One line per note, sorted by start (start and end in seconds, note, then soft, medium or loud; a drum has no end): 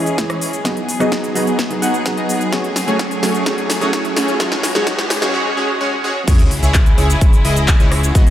0.00 0.63 E3 medium
0.00 0.63 C#4 medium
0.00 0.27 E4 medium
0.00 0.27 G#4 medium
0.00 0.63 G#4 medium
0.00 0.27 D#5 loud
0.00 riser medium
0.06 closed hi-hat soft
0.06 cabasa soft
0.18 0.31 E3 medium
0.18 0.31 G#3 medium
0.18 0.31 C#4 medium
0.18 0.31 G#4 medium
0.18 kick loud
0.18 snare medium
0.18 closed hi-hat medium
0.18 cabasa soft
0.30 0.62 E4 medium
0.30 0.62 G#4 medium
0.30 0.62 C#5 medium
0.30 cross-stick medium
0.30 closed hi-hat soft
0.41 open hi-hat loud
0.41 cabasa medium
0.53 closed hi-hat soft
0.53 cabasa soft
0.64 0.78 F#3 medium
0.64 4.36 F#3 medium
0.64 0.78 B3 medium
0.64 2.51 B3 medium
0.64 0.78 D#4 medium
0.64 0.78 F#4 medium
0.64 0.78 G#4 medium
0.64 5.30 G#4 medium
0.64 0.78 G#4 medium
0.64 0.78 D#5 medium
0.64 kick loud
0.64 snare medium
0.64 closed hi-hat medium
0.64 cabasa soft
0.77 closed hi-hat soft
0.89 open hi-hat loud
0.89 cabasa medium
1.00 1.32 F#3 loud
1.00 1.32 B3 medium
1.00 1.13 B3 medium
1.00 1.13 D#4 medium
1.00 1.33 D#4 medium
1.00 1.13 F#4 medium
1.00 1.13 G#4 medium
1.00 1.33 G#4 loud
1.00 1.13 D#5 medium
1.00 cross-stick medium
1.00 closed hi-hat soft
1.00 cabasa soft
1.12 kick loud
1.12 snare medium
1.12 closed hi-hat medium
1.12 cabasa soft
1.24 closed hi-hat soft
1.24 cabasa soft
1.35 1.56 F#3 medium
1.35 1.56 B3 medium
1.35 1.56 D#4 medium
1.35 1.56 F#4 medium
1.35 1.56 G#4 medium
1.35 1.56 G#4 loud
1.35 1.56 D#5 medium
1.35 open hi-hat loud
1.35 cabasa medium
1.47 closed hi-hat soft
1.47 cabasa soft
1.59 kick loud
1.59 snare medium
1.59 closed hi-hat medium
1.59 cabasa soft
1.70 1.91 F#3 medium
1.70 1.91 B3 medium
1.70 1.91 D#4 medium
1.70 1.92 G#4 medium
1.70 closed hi-hat soft
1.82 2.15 B3 medium
1.82 2.15 D#4 medium
1.82 2.15 F#4 medium
1.82 2.15 G#4 medium
1.82 2.15 F#5 loud
1.82 open hi-hat loud
1.82 cabasa medium
1.94 closed hi-hat soft
1.94 cabasa soft
2.05 2.18 F#3 medium
2.05 2.19 B3 medium
2.05 2.19 D#4 medium
2.05 2.19 G#4 loud
2.05 kick loud
2.05 snare medium
2.05 closed hi-hat medium
2.05 cabasa soft
2.17 2.50 B3 medium
2.17 2.50 D#4 medium
2.17 2.50 F#4 medium
2.17 2.50 G#4 medium
2.17 2.50 D#5 medium
2.17 closed hi-hat soft
2.29 open hi-hat loud
2.29 cabasa medium
2.41 closed hi-hat soft
2.41 cabasa soft
2.52 2.65 F#3 medium
2.52 2.65 A3 medium
2.52 2.66 A3 medium
2.52 4.38 A3 medium
2.52 2.65 C#4 medium
2.52 2.66 C#4 medium
2.52 2.65 F#4 medium
2.52 2.65 G#4 medium
2.52 2.66 G#4 medium
2.52 2.65 C#5 medium
2.52 kick loud
2.52 snare medium
2.52 closed hi-hat medium
2.52 cabasa soft
2.64 closed hi-hat soft
2.76 snare medium
2.76 open hi-hat loud
2.76 cabasa medium
2.87 3.20 F#3 medium
2.87 3.20 A3 medium
2.87 3.01 A3 medium
2.87 3.01 C#4 medium
2.87 3.20 C#4 medium
2.87 3.01 F#4 medium
2.87 3.01 G#4 medium
2.87 3.20 G#4 loud
2.87 3.01 C#5 medium
2.87 closed hi-hat soft
2.87 cabasa soft
2.99 kick loud
2.99 snare medium
2.99 closed hi-hat medium
2.99 cabasa soft
3.11 closed hi-hat soft
3.11 cabasa soft
3.22 3.43 F#3 medium
3.22 3.44 A3 medium
3.22 3.43 A3 medium
3.22 3.43 C#4 medium
3.22 3.44 C#4 medium
3.22 3.43 F#4 medium
3.22 3.43 G#4 medium
3.22 3.44 G#4 medium
3.22 3.43 C#5 medium
3.22 snare medium
3.22 open hi-hat loud
3.22 cabasa medium
3.35 closed hi-hat soft
3.35 cabasa soft
3.46 3.59 F#3 medium
3.46 3.59 A3 medium
3.46 3.59 C#4 medium
3.46 3.59 F#4 medium
3.46 3.59 G#4 medium
3.46 3.60 G#4 medium
3.46 3.59 C#5 medium
3.46 kick loud
3.46 snare medium
3.46 closed hi-hat medium
3.46 cabasa soft
3.58 closed hi-hat soft
3.70 snare medium
3.70 open hi-hat loud
3.70 cabasa medium
3.81 4.13 F#3 medium
3.81 4.14 A3 medium
3.81 3.94 A3 medium
3.81 3.94 C#4 medium
3.81 4.14 C#4 medium
3.81 3.94 F#4 medium
3.81 3.94 G#4 medium
3.81 4.14 G#4 loud
3.81 3.94 C#5 medium
3.81 closed hi-hat soft
3.81 cabasa soft
3.93 kick loud
3.93 snare medium
3.93 closed hi-hat medium
3.93 cabasa soft
4.05 closed hi-hat soft
4.16 4.37 F#3 medium
4.16 4.37 A3 medium
4.16 4.37 C#4 medium
4.16 4.38 C#4 medium
4.16 4.37 F#4 medium
4.16 4.37 G#4 medium
4.16 4.38 G#4 medium
4.16 4.37 C#5 medium
4.16 snare medium
4.16 open hi-hat loud
4.16 cabasa medium
4.28 closed hi-hat soft
4.28 cabasa soft
4.40 5.33 E3 medium
4.40 4.53 F#3 medium
4.40 4.53 G#3 medium
4.40 5.33 C#4 medium
4.40 4.53 C#4 medium
4.40 4.53 F#4 medium
4.40 4.53 G#4 medium
4.40 4.53 C#5 medium
4.40 kick loud
4.40 snare medium
4.40 closed hi-hat medium
4.40 cabasa soft
4.52 snare medium
4.52 closed hi-hat soft
4.63 snare medium
4.63 open hi-hat loud
4.63 cabasa medium
4.75 4.85 F#3 loud
4.75 4.85 G#3 medium
4.75 4.85 C#4 medium
4.75 4.85 F#4 medium
4.75 4.85 G#4 medium
4.75 4.85 G#4 loud
4.75 4.85 C#5 medium
4.75 snare medium
4.75 closed hi-hat soft
4.75 cabasa soft
4.86 5.00 F#3 medium
4.86 5.00 G#3 medium
4.86 5.00 C#4 medium
4.86 5.00 F#4 medium
4.86 5.00 G#4 medium
4.86 5.00 C#5 medium
4.86 kick loud
4.86 snare loud
4.86 closed hi-hat medium
4.86 cabasa soft
4.99 snare medium
4.99 closed hi-hat soft
4.99 cabasa soft
5.10 snare loud
5.10 open hi-hat loud
5.10 cabasa medium
5.22 5.32 F#3 loud
5.22 5.32 G#3 medium
5.22 5.32 C#4 medium
5.22 5.32 F#4 medium
5.22 5.32 G#4 medium
5.22 5.32 G#4 loud
5.22 5.32 C#5 medium
5.22 snare medium
5.22 closed hi-hat soft
5.22 cabasa soft
5.34 5.47 G#3 medium
5.34 5.47 C#4 medium
5.34 5.47 F#4 medium
5.34 5.47 G#4 medium
5.34 5.47 C#5 medium
5.34 swell medium
5.57 5.70 G#3 medium
5.57 5.70 C#4 medium
5.57 5.70 F#4 medium
5.57 5.70 G#4 medium
5.57 5.70 C#5 medium
5.81 5.94 G#3 medium
5.81 5.94 C#4 medium
5.81 5.94 F#4 medium
5.81 5.94 G#4 medium
5.81 5.94 C#5 medium
6.04 6.17 G#3 medium
6.04 6.17 C#4 medium
6.04 6.17 F#4 medium
6.04 6.17 G#4 medium
6.04 6.17 C#5 medium
6.27 6.60 C#2 loud
6.27 8.13 C#3 medium
6.27 8.13 G#3 medium
6.27 6.40 E4 medium
6.27 8.13 E4 medium
6.27 6.40 G#4 medium
6.27 6.40 C#5 medium
6.27 kick loud
6.27 closed hi-hat loud
6.27 crash loud
6.27 sub drop medium
6.27 cabasa medium
6.39 closed hi-hat soft
6.39 cabasa soft
6.51 open hi-hat loud
6.63 6.96 C#2 loud
6.63 6.76 E4 medium
6.63 6.76 G#4 medium
6.63 6.76 C#5 medium
6.63 closed hi-hat soft
6.63 cabasa medium
6.74 kick loud
6.74 clap loud
6.74 closed hi-hat medium
6.74 cabasa medium
6.86 closed hi-hat soft
6.86 cabasa soft
6.98 7.16 C#2 medium
6.98 7.18 E4 medium
6.98 7.18 G#4 medium
6.98 7.18 C#5 medium
6.98 open hi-hat medium
7.10 closed hi-hat soft
7.10 cabasa medium
7.21 kick loud
7.21 closed hi-hat medium
7.21 cabasa medium
7.33 closed hi-hat soft
7.33 cabasa soft
7.45 7.78 C#2 loud
7.45 7.77 E4 loud
7.45 7.77 G#4 medium
7.45 7.77 D#5 loud
7.45 open hi-hat loud
7.56 closed hi-hat soft
7.56 cabasa medium
7.68 kick loud
7.68 clap loud
7.68 closed hi-hat medium
7.68 cabasa medium
7.80 8.13 C#2 loud
7.80 8.12 E4 medium
7.80 8.12 G#4 medium
7.80 8.12 C#5 medium
7.80 closed hi-hat soft
7.80 cabasa soft
7.92 cross-stick medium
7.92 open hi-hat medium
8.03 closed hi-hat soft
8.03 cabasa medium
8.15 8.30 G#1 loud
8.15 8.30 B2 medium
8.15 8.28 B3 medium
8.15 8.28 D#4 medium
8.15 8.28 F#4 medium
8.15 8.30 F#4 medium
8.15 8.28 G#4 medium
8.15 8.30 G#4 medium
8.15 8.28 D#5 medium
8.15 kick loud
8.15 closed hi-hat medium
8.15 cabasa medium
8.27 closed hi-hat soft